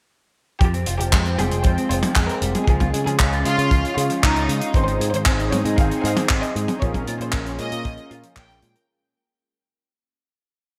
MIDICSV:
0, 0, Header, 1, 7, 480
1, 0, Start_track
1, 0, Key_signature, -4, "minor"
1, 0, Tempo, 517241
1, 564, Time_signature, 4, 2, 24, 8
1, 10004, End_track
2, 0, Start_track
2, 0, Title_t, "Violin section"
2, 0, Program_c, 0, 48
2, 565, Note_on_c, 0, 67, 90
2, 879, Note_off_c, 0, 67, 0
2, 923, Note_on_c, 0, 67, 86
2, 1238, Note_off_c, 0, 67, 0
2, 1285, Note_on_c, 0, 68, 83
2, 1494, Note_off_c, 0, 68, 0
2, 1525, Note_on_c, 0, 72, 83
2, 1734, Note_off_c, 0, 72, 0
2, 1765, Note_on_c, 0, 72, 89
2, 2079, Note_off_c, 0, 72, 0
2, 2127, Note_on_c, 0, 70, 92
2, 2440, Note_off_c, 0, 70, 0
2, 2485, Note_on_c, 0, 68, 92
2, 2799, Note_off_c, 0, 68, 0
2, 2847, Note_on_c, 0, 68, 91
2, 3159, Note_off_c, 0, 68, 0
2, 3204, Note_on_c, 0, 65, 98
2, 3623, Note_off_c, 0, 65, 0
2, 3684, Note_on_c, 0, 65, 84
2, 3894, Note_off_c, 0, 65, 0
2, 3923, Note_on_c, 0, 63, 92
2, 4342, Note_off_c, 0, 63, 0
2, 4402, Note_on_c, 0, 72, 98
2, 4717, Note_off_c, 0, 72, 0
2, 4762, Note_on_c, 0, 72, 95
2, 5078, Note_off_c, 0, 72, 0
2, 5122, Note_on_c, 0, 73, 86
2, 5333, Note_off_c, 0, 73, 0
2, 5365, Note_on_c, 0, 77, 84
2, 5574, Note_off_c, 0, 77, 0
2, 5603, Note_on_c, 0, 77, 90
2, 5918, Note_off_c, 0, 77, 0
2, 5963, Note_on_c, 0, 75, 91
2, 6278, Note_off_c, 0, 75, 0
2, 6324, Note_on_c, 0, 73, 93
2, 6638, Note_off_c, 0, 73, 0
2, 6685, Note_on_c, 0, 72, 92
2, 6999, Note_off_c, 0, 72, 0
2, 7044, Note_on_c, 0, 75, 98
2, 7463, Note_off_c, 0, 75, 0
2, 7525, Note_on_c, 0, 77, 87
2, 7734, Note_off_c, 0, 77, 0
2, 7764, Note_on_c, 0, 79, 91
2, 8183, Note_off_c, 0, 79, 0
2, 10004, End_track
3, 0, Start_track
3, 0, Title_t, "Analog polysynth"
3, 0, Program_c, 1, 90
3, 4404, Note_on_c, 1, 60, 93
3, 4404, Note_on_c, 1, 63, 89
3, 4404, Note_on_c, 1, 68, 90
3, 4404, Note_on_c, 1, 72, 107
3, 5215, Note_off_c, 1, 60, 0
3, 5215, Note_off_c, 1, 63, 0
3, 5215, Note_off_c, 1, 68, 0
3, 5215, Note_off_c, 1, 72, 0
3, 5246, Note_on_c, 1, 60, 81
3, 5246, Note_on_c, 1, 63, 76
3, 5246, Note_on_c, 1, 68, 74
3, 5246, Note_on_c, 1, 72, 91
3, 6296, Note_off_c, 1, 60, 0
3, 6296, Note_off_c, 1, 63, 0
3, 6296, Note_off_c, 1, 68, 0
3, 6296, Note_off_c, 1, 72, 0
3, 6324, Note_on_c, 1, 61, 96
3, 6324, Note_on_c, 1, 65, 84
3, 6324, Note_on_c, 1, 68, 85
3, 6324, Note_on_c, 1, 70, 104
3, 7135, Note_off_c, 1, 61, 0
3, 7135, Note_off_c, 1, 65, 0
3, 7135, Note_off_c, 1, 68, 0
3, 7135, Note_off_c, 1, 70, 0
3, 7165, Note_on_c, 1, 61, 83
3, 7165, Note_on_c, 1, 65, 74
3, 7165, Note_on_c, 1, 68, 75
3, 7165, Note_on_c, 1, 70, 92
3, 7500, Note_off_c, 1, 61, 0
3, 7500, Note_off_c, 1, 65, 0
3, 7500, Note_off_c, 1, 68, 0
3, 7501, Note_off_c, 1, 70, 0
3, 7525, Note_on_c, 1, 68, 77
3, 7526, Note_on_c, 1, 61, 91
3, 7526, Note_on_c, 1, 65, 82
3, 7526, Note_on_c, 1, 70, 94
3, 8216, Note_off_c, 1, 61, 0
3, 8216, Note_off_c, 1, 65, 0
3, 8216, Note_off_c, 1, 68, 0
3, 8216, Note_off_c, 1, 70, 0
3, 10004, End_track
4, 0, Start_track
4, 0, Title_t, "Analog synth pad"
4, 0, Program_c, 2, 89
4, 565, Note_on_c, 2, 79, 74
4, 566, Note_on_c, 2, 56, 88
4, 566, Note_on_c, 2, 60, 75
4, 567, Note_on_c, 2, 53, 81
4, 2465, Note_off_c, 2, 79, 0
4, 2466, Note_off_c, 2, 53, 0
4, 2466, Note_off_c, 2, 60, 0
4, 2484, Note_on_c, 2, 61, 83
4, 2484, Note_on_c, 2, 65, 73
4, 4368, Note_off_c, 2, 56, 0
4, 4385, Note_off_c, 2, 61, 0
4, 4385, Note_off_c, 2, 65, 0
4, 4405, Note_on_c, 2, 60, 80
4, 4405, Note_on_c, 2, 68, 91
4, 4406, Note_on_c, 2, 63, 74
4, 6305, Note_off_c, 2, 60, 0
4, 6306, Note_off_c, 2, 63, 0
4, 6324, Note_on_c, 2, 58, 81
4, 6326, Note_on_c, 2, 61, 94
4, 6327, Note_on_c, 2, 65, 72
4, 8208, Note_off_c, 2, 68, 0
4, 8225, Note_off_c, 2, 58, 0
4, 8226, Note_off_c, 2, 61, 0
4, 8226, Note_off_c, 2, 65, 0
4, 10004, End_track
5, 0, Start_track
5, 0, Title_t, "Clean electric guitar"
5, 0, Program_c, 3, 27
5, 564, Note_on_c, 3, 53, 94
5, 667, Note_off_c, 3, 53, 0
5, 686, Note_on_c, 3, 60, 74
5, 799, Note_off_c, 3, 60, 0
5, 806, Note_on_c, 3, 65, 74
5, 866, Note_off_c, 3, 65, 0
5, 926, Note_on_c, 3, 53, 69
5, 1028, Note_off_c, 3, 53, 0
5, 1046, Note_on_c, 3, 56, 81
5, 1159, Note_off_c, 3, 56, 0
5, 1165, Note_on_c, 3, 60, 73
5, 1267, Note_off_c, 3, 60, 0
5, 1285, Note_on_c, 3, 55, 93
5, 1387, Note_off_c, 3, 55, 0
5, 1404, Note_on_c, 3, 68, 73
5, 1507, Note_off_c, 3, 68, 0
5, 1525, Note_on_c, 3, 53, 92
5, 1627, Note_off_c, 3, 53, 0
5, 1645, Note_on_c, 3, 60, 76
5, 1758, Note_off_c, 3, 60, 0
5, 1765, Note_on_c, 3, 65, 76
5, 1826, Note_off_c, 3, 65, 0
5, 1885, Note_on_c, 3, 53, 74
5, 1987, Note_off_c, 3, 53, 0
5, 2006, Note_on_c, 3, 56, 77
5, 2119, Note_off_c, 3, 56, 0
5, 2126, Note_on_c, 3, 60, 70
5, 2228, Note_off_c, 3, 60, 0
5, 2247, Note_on_c, 3, 55, 92
5, 2348, Note_off_c, 3, 55, 0
5, 2366, Note_on_c, 3, 68, 74
5, 2468, Note_off_c, 3, 68, 0
5, 2488, Note_on_c, 3, 53, 90
5, 2588, Note_off_c, 3, 53, 0
5, 2605, Note_on_c, 3, 65, 75
5, 2718, Note_off_c, 3, 65, 0
5, 2723, Note_on_c, 3, 68, 74
5, 2785, Note_off_c, 3, 68, 0
5, 2843, Note_on_c, 3, 53, 72
5, 2946, Note_off_c, 3, 53, 0
5, 2964, Note_on_c, 3, 61, 80
5, 3078, Note_off_c, 3, 61, 0
5, 3084, Note_on_c, 3, 65, 73
5, 3187, Note_off_c, 3, 65, 0
5, 3203, Note_on_c, 3, 56, 96
5, 3306, Note_off_c, 3, 56, 0
5, 3322, Note_on_c, 3, 77, 75
5, 3426, Note_off_c, 3, 77, 0
5, 3443, Note_on_c, 3, 53, 99
5, 3546, Note_off_c, 3, 53, 0
5, 3563, Note_on_c, 3, 65, 73
5, 3678, Note_off_c, 3, 65, 0
5, 3684, Note_on_c, 3, 68, 76
5, 3746, Note_off_c, 3, 68, 0
5, 3805, Note_on_c, 3, 53, 75
5, 3907, Note_off_c, 3, 53, 0
5, 3924, Note_on_c, 3, 61, 82
5, 4038, Note_off_c, 3, 61, 0
5, 4042, Note_on_c, 3, 65, 76
5, 4146, Note_off_c, 3, 65, 0
5, 4163, Note_on_c, 3, 56, 97
5, 4266, Note_off_c, 3, 56, 0
5, 4283, Note_on_c, 3, 77, 73
5, 4386, Note_off_c, 3, 77, 0
5, 4405, Note_on_c, 3, 51, 96
5, 4507, Note_off_c, 3, 51, 0
5, 4525, Note_on_c, 3, 63, 76
5, 4638, Note_off_c, 3, 63, 0
5, 4644, Note_on_c, 3, 68, 75
5, 4706, Note_off_c, 3, 68, 0
5, 4764, Note_on_c, 3, 51, 74
5, 4867, Note_off_c, 3, 51, 0
5, 4885, Note_on_c, 3, 60, 79
5, 4999, Note_off_c, 3, 60, 0
5, 5003, Note_on_c, 3, 63, 72
5, 5106, Note_off_c, 3, 63, 0
5, 5123, Note_on_c, 3, 56, 96
5, 5226, Note_off_c, 3, 56, 0
5, 5244, Note_on_c, 3, 75, 73
5, 5346, Note_off_c, 3, 75, 0
5, 5363, Note_on_c, 3, 51, 101
5, 5466, Note_off_c, 3, 51, 0
5, 5485, Note_on_c, 3, 63, 76
5, 5598, Note_off_c, 3, 63, 0
5, 5604, Note_on_c, 3, 68, 79
5, 5666, Note_off_c, 3, 68, 0
5, 5725, Note_on_c, 3, 51, 76
5, 5827, Note_off_c, 3, 51, 0
5, 5845, Note_on_c, 3, 60, 79
5, 5958, Note_off_c, 3, 60, 0
5, 5965, Note_on_c, 3, 63, 77
5, 6067, Note_off_c, 3, 63, 0
5, 6084, Note_on_c, 3, 56, 90
5, 6186, Note_off_c, 3, 56, 0
5, 6205, Note_on_c, 3, 75, 70
5, 6307, Note_off_c, 3, 75, 0
5, 6325, Note_on_c, 3, 53, 99
5, 6427, Note_off_c, 3, 53, 0
5, 6444, Note_on_c, 3, 61, 75
5, 6558, Note_off_c, 3, 61, 0
5, 6563, Note_on_c, 3, 65, 75
5, 6625, Note_off_c, 3, 65, 0
5, 6682, Note_on_c, 3, 53, 74
5, 6786, Note_off_c, 3, 53, 0
5, 6802, Note_on_c, 3, 58, 83
5, 6917, Note_off_c, 3, 58, 0
5, 6922, Note_on_c, 3, 61, 74
5, 7026, Note_off_c, 3, 61, 0
5, 7041, Note_on_c, 3, 56, 96
5, 7145, Note_off_c, 3, 56, 0
5, 7162, Note_on_c, 3, 70, 75
5, 7266, Note_off_c, 3, 70, 0
5, 7282, Note_on_c, 3, 53, 101
5, 7386, Note_off_c, 3, 53, 0
5, 7402, Note_on_c, 3, 61, 73
5, 7517, Note_off_c, 3, 61, 0
5, 7523, Note_on_c, 3, 65, 79
5, 7585, Note_off_c, 3, 65, 0
5, 7642, Note_on_c, 3, 53, 75
5, 7746, Note_off_c, 3, 53, 0
5, 7761, Note_on_c, 3, 58, 80
5, 7877, Note_off_c, 3, 58, 0
5, 7881, Note_on_c, 3, 61, 72
5, 7985, Note_off_c, 3, 61, 0
5, 8002, Note_on_c, 3, 56, 96
5, 8106, Note_off_c, 3, 56, 0
5, 8121, Note_on_c, 3, 70, 77
5, 8225, Note_off_c, 3, 70, 0
5, 10004, End_track
6, 0, Start_track
6, 0, Title_t, "Picked electric bass"
6, 0, Program_c, 4, 34
6, 564, Note_on_c, 4, 41, 95
6, 779, Note_off_c, 4, 41, 0
6, 805, Note_on_c, 4, 29, 74
6, 912, Note_off_c, 4, 29, 0
6, 924, Note_on_c, 4, 29, 88
6, 1031, Note_off_c, 4, 29, 0
6, 1045, Note_on_c, 4, 41, 97
6, 1259, Note_off_c, 4, 41, 0
6, 1284, Note_on_c, 4, 29, 84
6, 1392, Note_off_c, 4, 29, 0
6, 1403, Note_on_c, 4, 29, 95
6, 1511, Note_off_c, 4, 29, 0
6, 1527, Note_on_c, 4, 41, 92
6, 1633, Note_off_c, 4, 41, 0
6, 1764, Note_on_c, 4, 29, 94
6, 1871, Note_off_c, 4, 29, 0
6, 2005, Note_on_c, 4, 41, 78
6, 2112, Note_off_c, 4, 41, 0
6, 2244, Note_on_c, 4, 29, 95
6, 2351, Note_off_c, 4, 29, 0
6, 2481, Note_on_c, 4, 37, 93
6, 2698, Note_off_c, 4, 37, 0
6, 2725, Note_on_c, 4, 49, 80
6, 2832, Note_off_c, 4, 49, 0
6, 2845, Note_on_c, 4, 49, 96
6, 2952, Note_off_c, 4, 49, 0
6, 2967, Note_on_c, 4, 37, 98
6, 3180, Note_off_c, 4, 37, 0
6, 3204, Note_on_c, 4, 49, 85
6, 3311, Note_off_c, 4, 49, 0
6, 3325, Note_on_c, 4, 49, 100
6, 3432, Note_off_c, 4, 49, 0
6, 3444, Note_on_c, 4, 37, 91
6, 3552, Note_off_c, 4, 37, 0
6, 3684, Note_on_c, 4, 49, 75
6, 3791, Note_off_c, 4, 49, 0
6, 3928, Note_on_c, 4, 37, 89
6, 4141, Note_off_c, 4, 37, 0
6, 4162, Note_on_c, 4, 49, 97
6, 4270, Note_off_c, 4, 49, 0
6, 4401, Note_on_c, 4, 32, 97
6, 4617, Note_off_c, 4, 32, 0
6, 4644, Note_on_c, 4, 44, 80
6, 4751, Note_off_c, 4, 44, 0
6, 4762, Note_on_c, 4, 44, 91
6, 4870, Note_off_c, 4, 44, 0
6, 4882, Note_on_c, 4, 32, 99
6, 5098, Note_off_c, 4, 32, 0
6, 5122, Note_on_c, 4, 44, 85
6, 5230, Note_off_c, 4, 44, 0
6, 5242, Note_on_c, 4, 44, 101
6, 5351, Note_off_c, 4, 44, 0
6, 5363, Note_on_c, 4, 32, 95
6, 5471, Note_off_c, 4, 32, 0
6, 5604, Note_on_c, 4, 44, 92
6, 5712, Note_off_c, 4, 44, 0
6, 5849, Note_on_c, 4, 32, 80
6, 5954, Note_off_c, 4, 32, 0
6, 6084, Note_on_c, 4, 44, 99
6, 6192, Note_off_c, 4, 44, 0
6, 6330, Note_on_c, 4, 34, 97
6, 6542, Note_off_c, 4, 34, 0
6, 6564, Note_on_c, 4, 46, 75
6, 6671, Note_off_c, 4, 46, 0
6, 6683, Note_on_c, 4, 46, 99
6, 6791, Note_off_c, 4, 46, 0
6, 6805, Note_on_c, 4, 34, 97
6, 7019, Note_off_c, 4, 34, 0
6, 7045, Note_on_c, 4, 46, 84
6, 7152, Note_off_c, 4, 46, 0
6, 7165, Note_on_c, 4, 46, 98
6, 7272, Note_off_c, 4, 46, 0
6, 7285, Note_on_c, 4, 34, 90
6, 7392, Note_off_c, 4, 34, 0
6, 7525, Note_on_c, 4, 46, 78
6, 7632, Note_off_c, 4, 46, 0
6, 7762, Note_on_c, 4, 34, 85
6, 7978, Note_off_c, 4, 34, 0
6, 8004, Note_on_c, 4, 46, 98
6, 8111, Note_off_c, 4, 46, 0
6, 10004, End_track
7, 0, Start_track
7, 0, Title_t, "Drums"
7, 564, Note_on_c, 9, 36, 116
7, 566, Note_on_c, 9, 42, 68
7, 657, Note_off_c, 9, 36, 0
7, 659, Note_off_c, 9, 42, 0
7, 685, Note_on_c, 9, 42, 41
7, 778, Note_off_c, 9, 42, 0
7, 799, Note_on_c, 9, 42, 102
7, 892, Note_off_c, 9, 42, 0
7, 931, Note_on_c, 9, 42, 64
7, 1024, Note_off_c, 9, 42, 0
7, 1045, Note_on_c, 9, 36, 113
7, 1046, Note_on_c, 9, 39, 109
7, 1051, Note_on_c, 9, 42, 55
7, 1138, Note_off_c, 9, 36, 0
7, 1139, Note_off_c, 9, 39, 0
7, 1143, Note_off_c, 9, 42, 0
7, 1161, Note_on_c, 9, 42, 38
7, 1254, Note_off_c, 9, 42, 0
7, 1286, Note_on_c, 9, 48, 52
7, 1287, Note_on_c, 9, 42, 91
7, 1378, Note_off_c, 9, 48, 0
7, 1380, Note_off_c, 9, 42, 0
7, 1402, Note_on_c, 9, 42, 63
7, 1495, Note_off_c, 9, 42, 0
7, 1516, Note_on_c, 9, 42, 68
7, 1527, Note_on_c, 9, 36, 115
7, 1609, Note_off_c, 9, 42, 0
7, 1620, Note_off_c, 9, 36, 0
7, 1648, Note_on_c, 9, 42, 46
7, 1741, Note_off_c, 9, 42, 0
7, 1767, Note_on_c, 9, 42, 91
7, 1860, Note_off_c, 9, 42, 0
7, 1881, Note_on_c, 9, 48, 78
7, 1883, Note_on_c, 9, 42, 68
7, 1974, Note_off_c, 9, 48, 0
7, 1976, Note_off_c, 9, 42, 0
7, 1998, Note_on_c, 9, 39, 109
7, 2005, Note_on_c, 9, 36, 94
7, 2008, Note_on_c, 9, 42, 62
7, 2091, Note_off_c, 9, 39, 0
7, 2098, Note_off_c, 9, 36, 0
7, 2101, Note_off_c, 9, 42, 0
7, 2126, Note_on_c, 9, 42, 48
7, 2219, Note_off_c, 9, 42, 0
7, 2242, Note_on_c, 9, 42, 109
7, 2335, Note_off_c, 9, 42, 0
7, 2363, Note_on_c, 9, 42, 63
7, 2367, Note_on_c, 9, 48, 50
7, 2456, Note_off_c, 9, 42, 0
7, 2460, Note_off_c, 9, 48, 0
7, 2482, Note_on_c, 9, 36, 115
7, 2487, Note_on_c, 9, 42, 71
7, 2575, Note_off_c, 9, 36, 0
7, 2579, Note_off_c, 9, 42, 0
7, 2601, Note_on_c, 9, 48, 61
7, 2603, Note_on_c, 9, 42, 45
7, 2607, Note_on_c, 9, 36, 55
7, 2694, Note_off_c, 9, 48, 0
7, 2695, Note_off_c, 9, 42, 0
7, 2699, Note_off_c, 9, 36, 0
7, 2726, Note_on_c, 9, 42, 95
7, 2819, Note_off_c, 9, 42, 0
7, 2849, Note_on_c, 9, 42, 67
7, 2942, Note_off_c, 9, 42, 0
7, 2963, Note_on_c, 9, 39, 122
7, 2963, Note_on_c, 9, 42, 64
7, 2967, Note_on_c, 9, 36, 111
7, 3055, Note_off_c, 9, 39, 0
7, 3055, Note_off_c, 9, 42, 0
7, 3060, Note_off_c, 9, 36, 0
7, 3086, Note_on_c, 9, 42, 42
7, 3179, Note_off_c, 9, 42, 0
7, 3204, Note_on_c, 9, 42, 96
7, 3296, Note_off_c, 9, 42, 0
7, 3329, Note_on_c, 9, 42, 54
7, 3421, Note_off_c, 9, 42, 0
7, 3445, Note_on_c, 9, 36, 110
7, 3446, Note_on_c, 9, 42, 58
7, 3537, Note_off_c, 9, 36, 0
7, 3539, Note_off_c, 9, 42, 0
7, 3570, Note_on_c, 9, 42, 44
7, 3662, Note_off_c, 9, 42, 0
7, 3689, Note_on_c, 9, 42, 102
7, 3782, Note_off_c, 9, 42, 0
7, 3802, Note_on_c, 9, 42, 60
7, 3895, Note_off_c, 9, 42, 0
7, 3926, Note_on_c, 9, 42, 65
7, 3928, Note_on_c, 9, 36, 122
7, 3932, Note_on_c, 9, 39, 119
7, 4019, Note_off_c, 9, 42, 0
7, 4021, Note_off_c, 9, 36, 0
7, 4025, Note_off_c, 9, 39, 0
7, 4047, Note_on_c, 9, 42, 49
7, 4140, Note_off_c, 9, 42, 0
7, 4167, Note_on_c, 9, 42, 97
7, 4260, Note_off_c, 9, 42, 0
7, 4280, Note_on_c, 9, 42, 62
7, 4373, Note_off_c, 9, 42, 0
7, 4401, Note_on_c, 9, 36, 121
7, 4409, Note_on_c, 9, 42, 54
7, 4494, Note_off_c, 9, 36, 0
7, 4502, Note_off_c, 9, 42, 0
7, 4526, Note_on_c, 9, 42, 45
7, 4619, Note_off_c, 9, 42, 0
7, 4650, Note_on_c, 9, 42, 103
7, 4743, Note_off_c, 9, 42, 0
7, 4766, Note_on_c, 9, 42, 63
7, 4859, Note_off_c, 9, 42, 0
7, 4877, Note_on_c, 9, 39, 116
7, 4883, Note_on_c, 9, 36, 107
7, 4886, Note_on_c, 9, 42, 68
7, 4970, Note_off_c, 9, 39, 0
7, 4975, Note_off_c, 9, 36, 0
7, 4979, Note_off_c, 9, 42, 0
7, 5007, Note_on_c, 9, 42, 40
7, 5100, Note_off_c, 9, 42, 0
7, 5125, Note_on_c, 9, 42, 87
7, 5126, Note_on_c, 9, 48, 56
7, 5218, Note_off_c, 9, 42, 0
7, 5219, Note_off_c, 9, 48, 0
7, 5245, Note_on_c, 9, 42, 54
7, 5338, Note_off_c, 9, 42, 0
7, 5363, Note_on_c, 9, 36, 116
7, 5365, Note_on_c, 9, 42, 66
7, 5456, Note_off_c, 9, 36, 0
7, 5458, Note_off_c, 9, 42, 0
7, 5486, Note_on_c, 9, 42, 45
7, 5579, Note_off_c, 9, 42, 0
7, 5612, Note_on_c, 9, 42, 96
7, 5705, Note_off_c, 9, 42, 0
7, 5723, Note_on_c, 9, 48, 79
7, 5724, Note_on_c, 9, 42, 71
7, 5816, Note_off_c, 9, 48, 0
7, 5817, Note_off_c, 9, 42, 0
7, 5837, Note_on_c, 9, 39, 118
7, 5848, Note_on_c, 9, 42, 68
7, 5849, Note_on_c, 9, 36, 114
7, 5930, Note_off_c, 9, 39, 0
7, 5941, Note_off_c, 9, 42, 0
7, 5942, Note_off_c, 9, 36, 0
7, 5965, Note_on_c, 9, 42, 47
7, 6058, Note_off_c, 9, 42, 0
7, 6088, Note_on_c, 9, 42, 89
7, 6180, Note_off_c, 9, 42, 0
7, 6202, Note_on_c, 9, 48, 63
7, 6206, Note_on_c, 9, 42, 56
7, 6295, Note_off_c, 9, 48, 0
7, 6298, Note_off_c, 9, 42, 0
7, 6329, Note_on_c, 9, 36, 107
7, 6329, Note_on_c, 9, 42, 60
7, 6422, Note_off_c, 9, 36, 0
7, 6422, Note_off_c, 9, 42, 0
7, 6443, Note_on_c, 9, 36, 57
7, 6444, Note_on_c, 9, 48, 56
7, 6446, Note_on_c, 9, 42, 40
7, 6536, Note_off_c, 9, 36, 0
7, 6537, Note_off_c, 9, 48, 0
7, 6539, Note_off_c, 9, 42, 0
7, 6563, Note_on_c, 9, 42, 98
7, 6656, Note_off_c, 9, 42, 0
7, 6687, Note_on_c, 9, 42, 62
7, 6780, Note_off_c, 9, 42, 0
7, 6795, Note_on_c, 9, 39, 117
7, 6805, Note_on_c, 9, 36, 114
7, 6805, Note_on_c, 9, 42, 64
7, 6888, Note_off_c, 9, 39, 0
7, 6898, Note_off_c, 9, 36, 0
7, 6898, Note_off_c, 9, 42, 0
7, 6924, Note_on_c, 9, 42, 45
7, 7017, Note_off_c, 9, 42, 0
7, 7038, Note_on_c, 9, 42, 80
7, 7131, Note_off_c, 9, 42, 0
7, 7161, Note_on_c, 9, 42, 58
7, 7254, Note_off_c, 9, 42, 0
7, 7284, Note_on_c, 9, 42, 65
7, 7285, Note_on_c, 9, 36, 116
7, 7376, Note_off_c, 9, 42, 0
7, 7378, Note_off_c, 9, 36, 0
7, 7399, Note_on_c, 9, 42, 37
7, 7492, Note_off_c, 9, 42, 0
7, 7523, Note_on_c, 9, 42, 83
7, 7616, Note_off_c, 9, 42, 0
7, 7640, Note_on_c, 9, 42, 68
7, 7733, Note_off_c, 9, 42, 0
7, 7762, Note_on_c, 9, 36, 109
7, 7762, Note_on_c, 9, 39, 123
7, 7762, Note_on_c, 9, 42, 56
7, 7855, Note_off_c, 9, 36, 0
7, 7855, Note_off_c, 9, 39, 0
7, 7855, Note_off_c, 9, 42, 0
7, 7889, Note_on_c, 9, 42, 46
7, 7982, Note_off_c, 9, 42, 0
7, 8002, Note_on_c, 9, 42, 84
7, 8094, Note_off_c, 9, 42, 0
7, 8124, Note_on_c, 9, 42, 58
7, 8217, Note_off_c, 9, 42, 0
7, 10004, End_track
0, 0, End_of_file